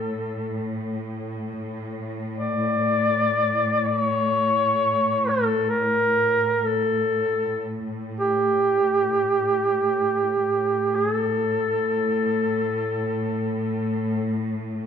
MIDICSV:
0, 0, Header, 1, 3, 480
1, 0, Start_track
1, 0, Tempo, 500000
1, 14270, End_track
2, 0, Start_track
2, 0, Title_t, "Duduk"
2, 0, Program_c, 0, 69
2, 0, Note_on_c, 0, 69, 83
2, 701, Note_off_c, 0, 69, 0
2, 2284, Note_on_c, 0, 74, 102
2, 3711, Note_off_c, 0, 74, 0
2, 3711, Note_on_c, 0, 74, 108
2, 3826, Note_off_c, 0, 74, 0
2, 3826, Note_on_c, 0, 73, 108
2, 5077, Note_on_c, 0, 69, 86
2, 5091, Note_off_c, 0, 73, 0
2, 5462, Note_off_c, 0, 69, 0
2, 5468, Note_on_c, 0, 70, 101
2, 6393, Note_on_c, 0, 69, 86
2, 6408, Note_off_c, 0, 70, 0
2, 7543, Note_off_c, 0, 69, 0
2, 7865, Note_on_c, 0, 67, 86
2, 10514, Note_on_c, 0, 68, 75
2, 10528, Note_off_c, 0, 67, 0
2, 10696, Note_off_c, 0, 68, 0
2, 10696, Note_on_c, 0, 69, 75
2, 13971, Note_off_c, 0, 69, 0
2, 14270, End_track
3, 0, Start_track
3, 0, Title_t, "String section"
3, 0, Program_c, 1, 48
3, 0, Note_on_c, 1, 45, 40
3, 10044, Note_off_c, 1, 45, 0
3, 10055, Note_on_c, 1, 45, 45
3, 14270, Note_off_c, 1, 45, 0
3, 14270, End_track
0, 0, End_of_file